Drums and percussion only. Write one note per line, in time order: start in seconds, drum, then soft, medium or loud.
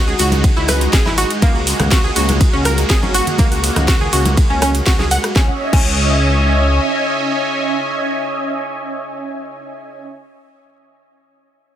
0.07 maracas soft
0.19 open hi-hat loud
0.19 maracas medium
0.32 closed hi-hat medium
0.32 high conga medium
0.32 maracas soft
0.44 kick loud
0.44 closed hi-hat medium
0.44 ride medium
0.44 maracas medium
0.56 maracas soft
0.68 cross-stick medium
0.68 open hi-hat loud
0.68 high conga medium
0.68 maracas medium
0.81 closed hi-hat medium
0.81 maracas soft
0.93 kick loud
0.93 snare loud
0.93 closed hi-hat medium
0.93 ride medium
0.93 maracas soft
1.06 snare soft
1.06 high conga medium
1.06 maracas soft
1.18 open hi-hat loud
1.18 maracas medium
1.30 closed hi-hat medium
1.30 maracas soft
1.42 kick loud
1.42 closed hi-hat medium
1.42 ride medium
1.42 high conga medium
1.42 maracas soft
1.55 maracas soft
1.67 open hi-hat loud
1.67 maracas medium
1.80 cross-stick medium
1.80 closed hi-hat medium
1.80 high conga medium
1.80 low conga loud
1.80 maracas soft
1.91 kick loud
1.91 snare loud
1.91 closed hi-hat medium
1.91 ride medium
1.91 maracas medium
2.04 maracas soft
2.16 open hi-hat loud
2.16 maracas medium
2.29 closed hi-hat medium
2.29 high conga medium
2.29 maracas soft
2.41 kick loud
2.41 closed hi-hat medium
2.41 ride medium
2.41 maracas soft
2.53 maracas soft
2.65 cross-stick medium
2.65 open hi-hat loud
2.65 high conga medium
2.65 maracas medium
2.77 closed hi-hat medium
2.77 maracas soft
2.90 kick loud
2.90 snare loud
2.90 closed hi-hat medium
2.90 ride medium
2.90 maracas medium
3.03 high conga medium
3.03 maracas soft
3.14 open hi-hat loud
3.14 maracas medium
3.27 closed hi-hat medium
3.27 low conga medium
3.27 maracas soft
3.38 kick loud
3.38 closed hi-hat medium
3.38 ride medium
3.38 high conga loud
3.38 maracas soft
3.52 open hi-hat medium
3.52 maracas soft
3.64 open hi-hat loud
3.64 maracas medium
3.76 cross-stick medium
3.76 closed hi-hat medium
3.76 high conga medium
3.76 low conga loud
3.76 maracas soft
3.88 kick loud
3.88 snare loud
3.88 closed hi-hat medium
3.88 ride medium
3.88 maracas soft
4.01 low conga medium
4.01 maracas soft
4.13 open hi-hat loud
4.13 maracas medium
4.25 closed hi-hat medium
4.25 high conga medium
4.25 maracas soft
4.37 kick loud
4.37 closed hi-hat medium
4.37 ride medium
4.37 maracas soft
4.50 maracas soft
4.61 cross-stick medium
4.61 open hi-hat loud
4.61 high conga medium
4.61 maracas medium
4.74 closed hi-hat medium
4.74 maracas soft
4.86 kick loud
4.86 snare loud
4.86 closed hi-hat medium
4.86 ride medium
4.86 maracas medium
4.99 snare soft
4.99 high conga medium
4.99 maracas soft
5.11 open hi-hat loud
5.11 maracas loud
5.24 cross-stick medium
5.24 closed hi-hat medium
5.24 maracas soft
5.36 kick loud
5.36 snare medium
5.73 kick loud
5.73 crash medium